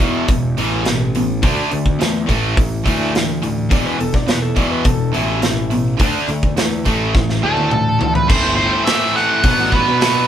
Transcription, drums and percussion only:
0.00 kick medium
0.00 open hi-hat soft
0.28 kick loud
0.28 open hi-hat medium
0.58 open hi-hat soft
0.85 snare loud
0.85 open hi-hat medium
1.15 open hi-hat soft
1.43 kick loud
1.43 open hi-hat medium
1.71 open hi-hat soft
1.86 kick medium
2.01 snare loud
2.01 open hi-hat medium
2.29 kick medium
2.29 open hi-hat soft
2.57 kick loud
2.57 open hi-hat medium
2.86 kick medium
2.86 open hi-hat medium
3.15 snare loud
3.15 open hi-hat medium
3.43 open hi-hat soft
3.71 kick loud
3.71 open hi-hat medium
4.00 open hi-hat soft
4.14 kick medium
4.14 snare soft
4.28 snare loud
4.28 open hi-hat medium
4.56 kick medium
4.56 open hi-hat soft
4.85 kick loud
4.85 open hi-hat medium
5.14 open hi-hat soft
5.42 snare loud
5.42 open hi-hat medium
5.71 open hi-hat soft
5.99 kick loud
5.99 open hi-hat medium
6.28 open hi-hat soft
6.43 kick medium
6.57 snare loud
6.57 open hi-hat medium
6.85 kick medium
6.85 open hi-hat soft
7.15 kick loud
7.15 snare medium
7.29 snare medium
7.57 high tom medium
7.71 mid tom medium
8.01 floor tom medium
8.15 floor tom medium
8.30 kick loud
8.30 crash loud
8.87 snare loud
8.87 open hi-hat medium
9.17 snare soft
9.44 kick loud
9.44 open hi-hat medium
9.72 kick medium
10.01 snare loud
10.01 open hi-hat medium

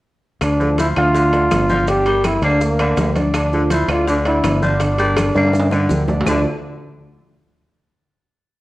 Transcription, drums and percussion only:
0.41 high bongo medium
0.41 high conga soft
0.41 high timbale medium
0.41 claves medium
0.41 maracas medium
0.60 high conga soft
0.60 maracas soft
0.78 high bongo medium
0.78 high conga medium
0.78 high timbale medium
0.78 low timbale medium
0.78 maracas medium
0.96 high bongo soft
0.96 high conga soft
0.96 high timbale medium
0.96 claves medium
0.96 maracas soft
1.15 high bongo medium
1.15 high conga soft
1.15 maracas medium
1.33 high bongo soft
1.33 high conga soft
1.33 high timbale medium
1.33 maracas soft
1.51 high bongo medium
1.51 low bongo medium
1.51 high conga medium
1.51 high timbale medium
1.51 low timbale medium
1.51 claves medium
1.51 maracas medium
1.70 high bongo soft
1.70 high conga medium
1.70 maracas soft
1.88 high bongo medium
1.88 high conga soft
1.88 high timbale medium
1.88 maracas medium
2.06 high conga soft
2.06 high timbale medium
2.06 maracas soft
2.24 high bongo medium
2.24 high conga medium
2.24 high timbale medium
2.24 low timbale medium
2.24 claves medium
2.24 maracas medium
2.42 high bongo soft
2.42 high conga soft
2.42 high timbale medium
2.42 maracas soft
2.61 high bongo medium
2.61 high conga soft
2.61 maracas medium
2.79 high bongo soft
2.79 high conga soft
2.79 high timbale medium
2.79 claves medium
2.79 maracas soft
2.97 high bongo medium
2.97 low bongo medium
2.97 high conga medium
2.97 high timbale medium
2.97 low timbale medium
2.97 maracas medium
3.16 high bongo soft
3.16 high conga medium
3.16 high timbale medium
3.16 maracas soft
3.34 high bongo medium
3.34 high conga soft
3.34 high timbale medium
3.34 claves medium
3.34 maracas medium
3.53 high conga soft
3.53 maracas soft
3.70 high bongo medium
3.70 high conga medium
3.70 high timbale medium
3.70 low timbale medium
3.70 maracas medium
3.89 high bongo soft
3.89 high conga soft
3.89 high timbale medium
3.89 claves medium
3.89 maracas soft
4.08 high bongo medium
4.08 high conga soft
4.08 maracas medium
4.25 high bongo soft
4.25 high conga soft
4.25 high timbale medium
4.25 maracas soft
4.44 high bongo medium
4.44 low bongo medium
4.44 high conga medium
4.44 high timbale medium
4.44 low timbale medium
4.44 claves medium
4.44 maracas medium
4.62 high bongo soft
4.62 high conga medium
4.62 maracas soft
4.80 high bongo medium
4.80 high conga soft
4.80 high timbale medium
4.80 maracas medium
4.99 high conga soft
4.99 high timbale medium
4.99 maracas soft
5.17 high bongo loud
5.17 high conga medium
5.17 high timbale loud
5.17 low timbale medium
5.17 claves medium
5.17 maracas medium
5.35 high bongo medium
5.35 high conga soft
5.35 high timbale medium
5.35 maracas soft
5.47 high timbale medium
5.53 low bongo medium
5.53 high conga soft
5.53 maracas medium
5.59 high timbale loud
5.71 low bongo loud
5.71 high conga soft
5.71 claves medium
5.71 maracas soft
5.89 low bongo medium
5.89 high conga medium
5.89 maracas medium
6.08 low bongo medium
6.08 high conga medium
6.08 low timbale medium
6.08 maracas soft
6.21 low timbale loud
6.26 low bongo medium
6.26 low conga medium
6.26 low timbale medium
6.26 claves loud
6.26 maracas medium

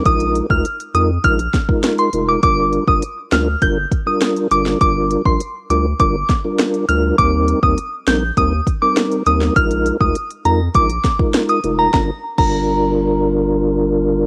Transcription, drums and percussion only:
0.05 kick loud
0.05 closed hi-hat medium
0.20 closed hi-hat medium
0.35 closed hi-hat medium
0.50 kick loud
0.65 closed hi-hat medium
0.80 closed hi-hat medium
0.95 closed hi-hat medium
1.24 kick medium
1.24 closed hi-hat medium
1.39 closed hi-hat medium
1.54 kick loud
1.54 snare medium
1.54 closed hi-hat medium
1.69 kick loud
1.84 cross-stick loud
1.84 snare loud
1.84 closed hi-hat medium
1.98 closed hi-hat soft
2.13 closed hi-hat medium
2.43 kick loud
2.43 closed hi-hat medium
2.73 closed hi-hat medium
2.88 kick loud
3.02 closed hi-hat medium
3.32 cross-stick medium
3.32 snare loud
3.32 closed hi-hat medium
3.62 kick medium
3.62 closed hi-hat medium
3.92 kick loud
3.92 closed hi-hat medium
4.21 cross-stick loud
4.21 snare loud
4.21 closed hi-hat medium
4.36 closed hi-hat soft
4.51 closed hi-hat medium
4.66 snare medium
4.81 kick loud
4.81 closed hi-hat medium
5.11 closed hi-hat medium
5.25 kick loud
5.40 closed hi-hat medium
5.70 closed hi-hat medium
6.00 kick loud
6.00 closed hi-hat medium
6.29 kick loud
6.29 snare medium
6.29 closed hi-hat medium
6.59 cross-stick loud
6.59 snare loud
6.59 closed hi-hat medium
6.74 closed hi-hat medium
6.89 closed hi-hat medium
7.19 kick loud
7.19 closed hi-hat medium
7.48 closed hi-hat medium
7.63 kick loud
7.78 closed hi-hat medium
8.08 cross-stick medium
8.08 snare loud
8.08 closed hi-hat medium
8.37 kick loud
8.37 closed hi-hat medium
8.67 kick loud
8.67 closed hi-hat medium
8.97 cross-stick medium
8.97 snare loud
8.97 closed hi-hat medium
9.12 closed hi-hat medium
9.26 closed hi-hat medium
9.41 snare medium
9.56 kick loud
9.56 closed hi-hat medium
9.71 closed hi-hat medium
9.86 closed hi-hat medium
10.01 kick loud
10.15 closed hi-hat medium
10.30 closed hi-hat medium
10.45 closed hi-hat medium
10.74 kick loud
10.74 closed hi-hat medium
10.90 closed hi-hat medium
11.04 kick loud
11.04 snare medium
11.04 closed hi-hat medium
11.19 kick loud
11.34 cross-stick loud
11.34 snare loud
11.34 closed hi-hat medium
11.49 closed hi-hat soft
11.64 closed hi-hat medium
11.94 kick loud
11.94 snare medium
12.38 kick loud
12.38 crash medium

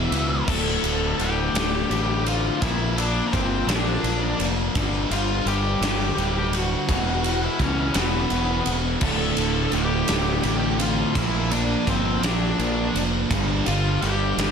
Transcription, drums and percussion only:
0.12 ride medium
0.48 kick loud
0.48 crash loud
0.84 ride medium
1.19 ride medium
1.55 snare loud
1.55 ride loud
1.91 ride medium
2.26 ride medium
2.62 kick loud
2.62 ride loud
2.98 ride medium
3.33 kick medium
3.33 ride medium
3.69 snare loud
3.69 ride loud
4.04 ride medium
4.40 ride medium
4.75 kick loud
4.75 ride loud
5.11 ride medium
5.47 ride medium
5.82 snare loud
5.82 ride loud
6.18 ride medium
6.53 ride medium
6.89 kick loud
6.89 ride loud
7.24 ride medium
7.59 kick medium
7.59 ride medium
7.94 snare loud
7.94 ride loud
8.30 ride medium
8.66 ride medium
9.01 kick loud
9.01 crash loud
9.37 ride medium
9.72 ride medium
10.08 snare loud
10.08 ride loud
10.43 ride medium
10.80 ride medium
11.15 kick loud
11.15 ride loud
11.51 ride medium
11.87 kick medium
11.87 ride medium
12.23 snare loud
12.23 ride loud
12.60 ride medium
12.96 ride medium
13.31 kick loud
13.31 ride loud
13.66 ride medium
14.02 ride medium
14.39 snare loud
14.39 ride loud

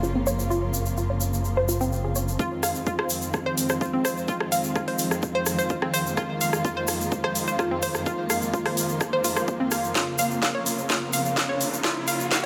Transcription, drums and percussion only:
0.03 shaker soft
0.27 shaker medium
0.39 shaker soft
0.51 shaker soft
0.74 shaker medium
0.86 shaker soft
0.97 shaker soft
1.21 shaker medium
1.33 shaker medium
1.45 shaker soft
1.69 shaker medium
1.81 shaker soft
1.92 shaker soft
2.15 shaker medium
2.28 shaker soft
2.39 kick loud
2.39 shaker soft
2.63 cross-stick soft
2.63 open hi-hat loud
2.63 shaker medium
2.75 shaker medium
2.86 kick loud
2.86 shaker soft
2.99 cross-stick soft
3.09 open hi-hat loud
3.09 shaker medium
3.22 shaker soft
3.33 kick loud
3.33 cross-stick soft
3.33 shaker soft
3.57 open hi-hat loud
3.57 shaker medium
3.69 cross-stick soft
3.69 shaker medium
3.81 kick loud
3.81 shaker soft
4.05 cross-stick soft
4.05 open hi-hat loud
4.05 shaker medium
4.17 shaker soft
4.28 kick loud
4.28 shaker soft
4.40 cross-stick soft
4.52 open hi-hat loud
4.52 shaker medium
4.64 shaker medium
4.75 kick loud
4.75 cross-stick soft
4.75 shaker soft
4.88 open hi-hat medium
4.98 open hi-hat loud
4.98 shaker loud
5.11 cross-stick soft
5.11 shaker medium
5.22 kick loud
5.22 shaker soft
5.46 cross-stick soft
5.46 open hi-hat loud
5.46 shaker loud
5.59 shaker medium
5.69 kick loud
5.69 shaker soft
5.82 cross-stick soft
5.94 open hi-hat loud
5.94 shaker medium
6.07 shaker medium
6.17 kick loud
6.17 cross-stick medium
6.17 shaker soft
6.41 open hi-hat loud
6.41 shaker medium
6.53 cross-stick medium
6.53 shaker soft
6.65 kick loud
6.65 shaker soft
6.87 cross-stick soft
6.87 open hi-hat loud
6.87 shaker loud
7.01 shaker medium
7.12 kick loud
7.12 shaker soft
7.24 cross-stick soft
7.35 open hi-hat loud
7.35 shaker medium
7.47 shaker medium
7.59 kick loud
7.59 cross-stick soft
7.59 shaker soft
7.82 open hi-hat loud
7.82 shaker medium
7.94 cross-stick soft
7.94 shaker medium
8.06 kick loud
8.06 shaker soft
8.30 cross-stick medium
8.30 open hi-hat loud
8.30 shaker medium
8.42 shaker medium
8.54 kick loud
8.54 shaker soft
8.66 cross-stick medium
8.66 open hi-hat medium
8.77 open hi-hat loud
8.77 shaker medium
8.89 shaker medium
9.00 kick loud
9.00 cross-stick medium
9.00 shaker soft
9.24 open hi-hat loud
9.24 shaker medium
9.36 cross-stick soft
9.36 shaker medium
9.48 kick loud
9.48 shaker soft
9.71 cross-stick medium
9.71 open hi-hat loud
9.71 shaker loud
9.84 shaker medium
9.95 kick loud
9.95 snare soft
9.95 shaker soft
10.18 open hi-hat loud
10.18 low conga medium
10.18 shaker loud
10.31 shaker soft
10.42 kick loud
10.42 snare medium
10.42 shaker soft
10.66 open hi-hat loud
10.66 shaker medium
10.78 low conga medium
10.78 shaker soft
10.89 kick loud
10.89 snare medium
10.89 shaker soft
11.13 open hi-hat loud
11.13 shaker medium
11.25 shaker medium
11.37 kick loud
11.37 snare medium
11.37 low conga loud
11.37 shaker soft
11.61 open hi-hat loud
11.61 shaker medium
11.73 shaker medium
11.84 kick loud
11.84 snare medium
11.84 shaker soft
11.96 low conga medium
12.08 open hi-hat loud
12.08 shaker medium
12.20 shaker medium
12.31 kick loud
12.31 snare medium
12.31 shaker soft

